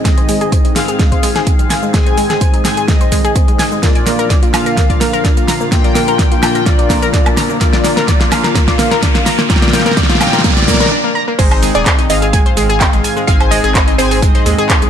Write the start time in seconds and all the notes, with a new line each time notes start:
Already playing: D#3 G#3 C4
0.05 G#1 G#2 G#3 C4 G#4 D#5, kick, snare, closed hi-hat, shaker
0.18 C5, closed hi-hat
0.29 G#3, open hi-hat, shaker
0.41 D#1 G#4, closed hi-hat, shaker
0.52 C5, kick, closed hi-hat, shaker
0.65 D#4, closed hi-hat
0.76 G#1 G#2 C4 G#4 F5, snare, open hi-hat, shaker
0.88 G#4, closed hi-hat, shaker
0.99 G#3, kick, snare, closed hi-hat, shaker
1.12 C5, kick, closed hi-hat
1.23 G#1 G#3, open hi-hat, shaker
1.36 G#4, snare, closed hi-hat, shaker
1.47 C4, kick, closed hi-hat, shaker
1.59 G#1 G#3, closed hi-hat, shaker
1.70 G#5, snare, open hi-hat, shaker
1.83 G#3, shaker
1.94 G#1 G#2 G#3 C4 G#4 G#5, kick, snare, closed hi-hat, shaker
2.06 C5, closed hi-hat
2.18 G#3, open hi-hat, shaker
2.30 G#1 G#4, snare, closed hi-hat, shaker
2.41 C5, kick, closed hi-hat, shaker
2.54 D#4, closed hi-hat
2.65 G#1 G#2 C4 G#4 G#5, snare, open hi-hat, shaker
2.77 G#4, closed hi-hat, shaker
2.88 G#2 G#3 C4 G#4 D#5, kick, snare, closed hi-hat, shaker
3.01 C5, closed hi-hat, shaker
3.12 G#1 G#3, kick, open hi-hat, shaker
3.25 G#4, closed hi-hat, shaker
3.36 C4, kick, closed hi-hat, shaker
3.48 G#2 G#3, closed hi-hat, shaker
3.59 G#5, snare, open hi-hat, shaker
3.72 G#3, shaker
3.83 A#1 A#2 D3 F3 A#3 F4 D5, kick, snare, closed hi-hat, riser, shaker
3.95 D5, closed hi-hat
4.07 A#3, snare, open hi-hat, shaker
4.19 G#1 A#4, closed hi-hat, shaker
4.30 D5, kick, snare, closed hi-hat, shaker
4.43 F4, closed hi-hat
4.54 A#1 A#2 A#3 F4 A#4 F5, snare, open hi-hat, high woodblock, shaker
4.66 A#4, closed hi-hat, shaker
4.77 A#3, kick, snare, closed hi-hat, shaker
4.90 D5, kick, closed hi-hat
5.01 A#1 A#3, snare, open hi-hat, shaker
5.13 A#4, closed hi-hat, shaker
5.25 D4, kick, snare, closed hi-hat, shaker
5.37 A#1 A#3, closed hi-hat, shaker
5.48 A#5, snare, open hi-hat, shaker
5.61 A#3, shaker
5.72 A#1 A#2 A#3 F4 G5, kick, snare, closed hi-hat, shaker
5.84 D5, closed hi-hat
5.95 A#3, snare, open hi-hat, shaker
6.08 A#1 A#4, closed hi-hat, shaker
6.19 D5, kick, snare, closed hi-hat, shaker
6.32 F4, closed hi-hat
6.43 A#1 A#2 A#3 F4 A#4 G5, snare, open hi-hat, high woodblock, shaker
6.55 A#4, closed hi-hat, shaker
6.66 A#2 A#3 F4 D5, kick, snare, closed hi-hat, shaker
6.79 D5, closed hi-hat
6.90 F2 A#3, kick, snare, open hi-hat, shaker
7.02 A#4, closed hi-hat, shaker
7.13 D4, kick, snare, closed hi-hat, shaker
7.26 D2 A#3, closed hi-hat, high woodblock, shaker
7.37 A#5, snare, open hi-hat, shaker
7.50 A#3, shaker
7.61 A#1 A#2 A#3 F4 D5, kick, snare, closed hi-hat, shaker
7.73 D5, snare, closed hi-hat
7.84 A#3, snare, open hi-hat, shaker
7.97 G#1 A#4, snare, closed hi-hat, shaker
8.08 D5, kick, snare, closed hi-hat, shaker
8.20 F4, snare, closed hi-hat
8.32 A#1 A#2 A#3 F4 A#4 F5, snare, open hi-hat, high woodblock, shaker
8.44 A#4, snare, closed hi-hat, shaker
8.55 A#3, kick, snare, closed hi-hat, shaker
8.68 D5, kick, snare, closed hi-hat
8.79 A#1 A#3, snare, open hi-hat, shaker
8.91 A#4, snare, closed hi-hat, shaker
9.02 D4, kick, snare, closed hi-hat, shaker
9.15 A#1 A#3, snare, closed hi-hat, shaker
9.26 A#5, snare, open hi-hat, shaker
9.39 A#3, snare, shaker
9.50 A#1 A#2 A#3 F4 G5, kick, snare, closed hi-hat, shaker
9.56 snare
9.62 D5, snare, closed hi-hat, shaker
9.68 snare
9.73 A#3, snare, open hi-hat, shaker
9.80 snare
9.86 A#1 A#4, snare, closed hi-hat, shaker
9.91 snare
9.97 D5, kick, snare, closed hi-hat, shaker
10.03 snare
10.10 F4, snare, closed hi-hat, shaker
10.15 snare
10.21 A#1 A#2 A#3 F4 A#4 G5, snare, open hi-hat, high woodblock, shaker
10.27 snare
10.33 A#4, snare, closed hi-hat, shaker
10.39 snare
10.44 A#2 A#3 F4 D5, kick, snare, closed hi-hat, shaker
10.51 snare
10.57 D5, snare, closed hi-hat, shaker
10.62 snare
10.68 F2 A#3, kick, snare, open hi-hat, shaker
10.74 snare
10.80 A#4, snare, closed hi-hat, shaker
10.86 snare
10.91 D4
11.04 A#3
11.15 A#5
11.28 A#3
11.39 G#1 G#2 D#3 G#3 C4 D#4 G#4 C5, kick, closed hi-hat, crash, shaker
11.51 C5, closed hi-hat, high woodblock
11.62 G#3, closed hi-hat, open hi-hat, shaker
11.75 D#1 G#4 D5, closed hi-hat, shaker
11.86 C5, kick, snare, clap, closed hi-hat, shaker
11.99 D#4, closed hi-hat
12.10 G#1 G#2 C4 G#4 D#5 F5, closed hi-hat, open hi-hat, shaker
12.22 G#4, closed hi-hat, shaker
12.33 G#3 G#5, kick, closed hi-hat, shaker
12.46 C5, closed hi-hat
12.57 G#1 G#3, closed hi-hat, open hi-hat, shaker
12.69 G#4, closed hi-hat, shaker
12.80 C4 G5, kick, snare, clap, closed hi-hat, shaker
12.93 G#1 G#3, snare, closed hi-hat, shaker
13.04 G#5, closed hi-hat, open hi-hat, shaker
13.17 G#3, snare, shaker
13.27 G#1 G#3 C4 G#4 F5 G#5, kick, closed hi-hat, shaker
13.40 C5, closed hi-hat, high woodblock
13.51 G#3 D#5, open hi-hat, shaker
13.64 G#1 G#4, snare, closed hi-hat, shaker
13.75 C5, kick, snare, clap, closed hi-hat, shaker
13.88 D#4, closed hi-hat
13.98 G#1 G#2 C4 G#4 C5 G#5, closed hi-hat, open hi-hat, shaker
14.11 G#4, snare, open hi-hat, shaker
14.22 G#3 D#5, kick, closed hi-hat, shaker
14.35 C5, snare, closed hi-hat
14.46 D#2 G#3, closed hi-hat, open hi-hat, shaker
14.59 G#4, closed hi-hat, shaker
14.70 C4, kick, snare, clap, closed hi-hat, shaker
14.82 C2 G#3, closed hi-hat, shaker